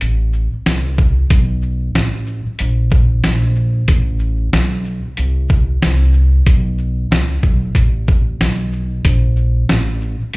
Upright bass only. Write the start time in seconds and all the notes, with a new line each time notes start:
0.02 A1
0.53 muted upright bass stroke
0.66 C2
1.31 B1
1.95 A1
2.47 muted upright bass stroke
2.60 A#1
3.25 A#1
3.89 A1
4.53 B1
5.05 muted upright bass stroke
5.18 C2
5.82 C2
6.47 B1
7.11 C#2
7.43 B1
7.75 A1
8.41 B1
9.05 A#1
9.69 A1
10.21 muted upright bass stroke